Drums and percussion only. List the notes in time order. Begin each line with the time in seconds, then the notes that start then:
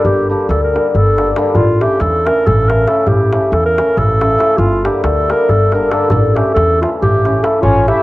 0.05 darbuka dum
0.41 darbuka tek
0.51 darbuka tek
0.64 darbuka tek
0.76 darbuka tek
0.95 darbuka dum
1.18 darbuka tek
1.27 darbuka tek
1.36 darbuka tek
1.46 darbuka tek
1.55 darbuka dum
1.68 darbuka tek
1.81 darbuka tek
2.00 darbuka tek
2.27 darbuka tek
2.46 darbuka dum
2.70 darbuka tek
2.87 darbuka tek
3.06 darbuka dum
3.19 darbuka tek
3.33 darbuka tek
3.53 darbuka tek
3.78 darbuka tek
3.98 darbuka dum
4.21 darbuka tek
4.40 darbuka tek
4.59 darbuka dum
4.73 darbuka tek
4.85 darbuka tek
5.04 darbuka tek
5.30 darbuka tek
5.49 darbuka dum
5.72 darbuka tek
5.92 darbuka tek
6.10 darbuka dum
6.24 darbuka tek
6.37 darbuka tek
6.47 darbuka tek
6.57 darbuka tek
6.70 darbuka tek
6.83 darbuka tek
6.93 darbuka tek
7.03 darbuka dum
7.14 darbuka tek
7.25 darbuka tek
7.35 darbuka tek
7.44 darbuka tek
7.63 darbuka dum
7.75 darbuka tek
7.88 darbuka tek